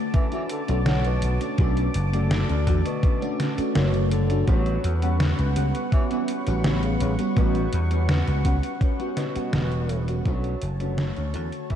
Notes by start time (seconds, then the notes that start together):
Already playing: D3 A3 F#4 A5 D6
0.14 E3 C#4 D4 A4 B4, kick, closed hi-hat
0.32 E3 A3 C#4 D4 F#4, closed hi-hat
0.50 D3, closed hi-hat
0.68 B1 D3 A3 C#4 D4 F#4, closed hi-hat
0.86 D3 A3 F#4 C#5, snare, closed hi-hat
1.05 B2, closed hi-hat
1.22 B1, closed hi-hat
1.40 A3 C#4 D4 F#4, closed hi-hat
1.58 B1 A3 C#4 D4 F#4 A4 B4, kick, closed hi-hat
1.77 closed hi-hat
1.94 F#1, closed hi-hat
2.12 D3 A3 C#4 D4 F#4 A4 D5, closed hi-hat
2.31 snare, closed hi-hat
2.49 D2 C#4 D4 A4 D5, closed hi-hat
2.67 E2 D3 A3 F#4, kick, closed hi-hat
2.86 B2, closed hi-hat
3.03 C#4 D4 A4 B4, kick, closed hi-hat
3.21 A3 C#4 D4 F#4, closed hi-hat
3.40 snare, closed hi-hat
3.58 A3 C#4 D4 F#4, muted slap bass stroke, closed hi-hat
3.75 F#1 B2 D3 A3 F#4 C#5, snare, closed hi-hat
3.94 closed hi-hat
4.11 D3, closed hi-hat
4.30 A3 C#4 D4 F#4, closed hi-hat
4.47 A1 F#3 G3 B3 C#4 F#4 G4 B4 F#5 C#6, kick, closed hi-hat
4.66 closed hi-hat
4.84 E2, closed hi-hat
5.02 G3 B3 C#4 F#4 G4 A4 F#5, closed hi-hat
5.20 snare, closed hi-hat
5.38 C#2 C#4 F#4 G4 B4, closed hi-hat
5.56 C#2 G3 B3 C#4 F#5, closed hi-hat
5.75 closed hi-hat
5.92 E3 C#4 F#4 G4 C#5, kick, closed hi-hat
6.10 E3 G3 B3 C#4 F#4, closed hi-hat
6.28 closed hi-hat
6.47 A1 G3 B3 C#4 F#4, closed hi-hat
6.64 G3 B3 C#4 F#5, snare, closed hi-hat
6.83 C#3, closed hi-hat
7.00 A1 C#3, closed hi-hat
7.19 G3 B3 C#4 F#4, closed hi-hat
7.36 A1 B2 G3 B3 C#4 F#4 G4 B4, kick, closed hi-hat
7.55 closed hi-hat
7.73 E2, closed hi-hat
7.91 G3 B3 C#4 F#4 G4 B4 F#5, closed hi-hat
8.09 snare, closed hi-hat
8.28 C#2 C#4 F#4 G4 B4, closed hi-hat
8.44 C#2 G3 B3 C#4 F#5, kick, closed hi-hat
8.63 closed hi-hat
8.81 C#4 F#4 G4 C#5, kick, closed hi-hat
8.99 G3 B3 C#4 F#4, closed hi-hat
9.17 B2, snare, closed hi-hat
9.35 G3 B3 C#4 F#4, muted slap bass stroke, closed hi-hat
9.53 E1 G3 B3 C#4 F#5, snare, closed hi-hat
9.72 closed hi-hat
9.89 closed hi-hat
10.08 G3 B3 C#4 F#4, closed hi-hat
10.25 B1 F#3 A3 C#4 D4 F#4 A4 B4 C#5 A5, kick, closed hi-hat
10.44 closed hi-hat
10.62 F#1, closed hi-hat
10.80 D3 A3 C#4 D4 F#4 A4 B4 C#5, closed hi-hat
10.98 snare, closed hi-hat
11.16 D2 C#4 D4 A4 C#5, closed hi-hat
11.34 E2 D3 A3 F#4 C#5, closed hi-hat
11.52 closed hi-hat
11.70 E3 C#4 D4 A4 B4, kick, closed hi-hat